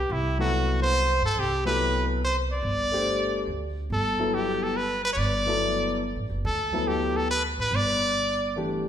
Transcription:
Already playing: G4
0.10 C2 E4
0.38 F#3 B3 E4 F#4 A4
0.82 C5
1.22 G2 A4
1.36 C2 G4
1.65 F#3 B3 E4 A4 B4
2.25 C5
2.52 D5
2.63 G1
2.92 A3 D4 G4 C5
3.47 D2
3.90 G1 A4
4.19 F#3 B3 E4 A4
4.34 G4
4.63 A4
4.77 B4
5.05 B4
5.13 G1 C#5
5.19 D5
5.46 F#3 B3 E4 A4
6.16 A1
6.30 F#1
6.44 D2 A4
6.73 F#3 B3 E4 A4
6.88 G4
7.17 A4
7.31 B4
7.57 A1 B4
7.71 G1
7.75 D5
8.56 E3 A3 D4 G4

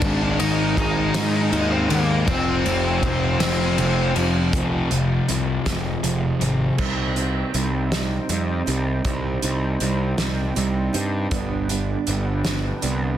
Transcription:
Already playing: D4 A#4 D5
0.02 G#1 G#2 D#3 G#3 C4 G#5, kick, ride
0.39 G#1 G#2 D#3 G#3 D#4 D#5, ride
0.77 G#1 G#2 D#3 G#3 D#4 D#5, kick, ride
1.14 G#2 D#3 G#3, snare, ride
1.52 D#2 G#2 D#3 G#3, ride
1.71 C4 C5
1.89 D#2 G#2 D#3 G#3 A#3 A#4, ride
2.27 F1 F2 C3 F3 C4 F4 C5, kick, ride
2.65 F1 F2 C3 F3, ride
3.03 F1 F2 C3 F3, kick, ride
3.40 F1 F2 C3 F3, snare, ride
3.78 F1 F2 C3 F3, ride
4.16 F1 F2 C3 F3, ride
4.53 F1 F2 C3 F3, kick, closed hi-hat
4.91 F1 F2 C3 F3, closed hi-hat
5.28 C2 F2 C3 C4, closed hi-hat
5.65 F1 F2 C3 G#3, kick, snare, closed hi-hat
6.03 F1 F2 C3 F3, closed hi-hat
6.40 G#1 F2 C3 C4, closed hi-hat
6.78 C2 C3 G3 C4 D#4 C5 G5, kick, crash
7.16 G3 C4 D#4, closed hi-hat
7.53 C2 C3 G3 C4 D#4, closed hi-hat
7.92 G3 C4 D#4, snare, closed hi-hat
8.29 F2 C3 G3 C4 D#4, closed hi-hat
8.66 C2 G3 C4 D#4, closed hi-hat
9.05 C2 C3 G3 C4 D#4, kick, closed hi-hat
9.42 C2 G3 C4 D#4, closed hi-hat
9.80 C2 C3 G3 C4 D#4, closed hi-hat
10.17 C2 G3 C4 D#4, snare, closed hi-hat
10.55 C2 C3 G3 C4 D#4, closed hi-hat
10.93 G2 G3 C4 D#4, closed hi-hat
11.31 G1 G2 D3 G3 B3 D4 B4, kick, closed hi-hat
11.69 G3 B3 D4, closed hi-hat
12.06 G1 D3 G3 B3 D4, closed hi-hat
12.44 G3 B3 D4, snare, closed hi-hat
12.81 C2 D3 G3 B3 D4, closed hi-hat

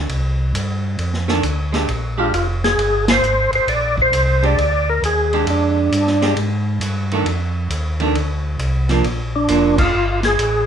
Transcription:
0.09 C2, ride
0.53 G2, hi-hat pedal, ride
0.98 F2, ride
1.14 snare
1.28 D#3 A3 D4, snare
1.43 D2, hi-hat pedal, ride
1.72 G#3 D4 G4, snare, ride
1.88 A#1, ride
2.18 G#3 D4 F4 G4
2.31 F1 F4, hi-hat pedal, ride
2.64 G#4, snare, ride
2.77 G1, ride
3.08 C5, snare, ride
3.21 G#1, hi-hat pedal
3.52 G#1 C5, ride
3.67 A#1 D5, ride
3.97 kick
4.02 C5
4.12 C2, hi-hat pedal, ride
4.42 G#3 D4 G4 D5, ride
4.57 D2, ride
4.89 A#4
5.02 D#2 G#4, hi-hat pedal, ride
5.33 G#3 D4 G4, ride
5.46 F2 D4, ride
5.91 G2, hi-hat pedal, ride
6.07 snare
6.22 G#3 D4 G4, snare, ride
6.36 G#2, ride
6.80 G2, hi-hat pedal, ride
7.11 D#3 A3 D4, ride
7.25 F2, ride
7.70 D#2, hi-hat pedal, ride
8.00 D#3 A3 D4, ride
8.13 D2, ride
8.58 C2, hi-hat pedal, ride
8.89 F3 A#3 D4, snare, ride
9.04 A#1, ride
9.36 D4
9.48 F1 F3 A#3 D4, hi-hat pedal, ride
9.78 F4, kick, crash
9.94 G1
10.23 G#4, snare, ride
10.38 A1, hi-hat pedal, ride

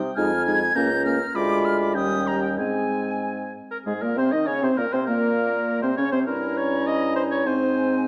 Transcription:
Already playing: C3 G5
0.16 F2 G#3 D#4 G#5 F6
0.46 G#3 D#4 G#6
0.75 C#2 A#3 C#4 A#5 G6
1.05 A#3 C#4 F6
1.35 D2 G#3 F4 B5 D6
1.65 F6
1.81 D6
1.95 D#2 G3 C#4 G5 D#6
2.27 A#5
2.43 G5
2.58 G#2 G#3 C4 G#5
3.71 A#4
3.86 G#2 G#3 G#4
4.01 A#2 A#3 A#4
4.16 C3 C4 C5
4.32 D#3 D#4 D#5
4.47 C#3 C#4 C#5
4.62 C3 C4 C5
4.77 A#2 A#3 A#4
4.92 C3 C4 C5
5.06 A#2 A#3 A#4
5.82 C3 C4 C5
5.97 C#3 C#4 C#5
6.12 C3 C4 C5
6.27 G2 C#4 E4 A#4 A#5
6.57 C#5
6.87 D#5
7.16 C5
7.31 C#5
7.45 G#2 C4 D#4 C5 G#5

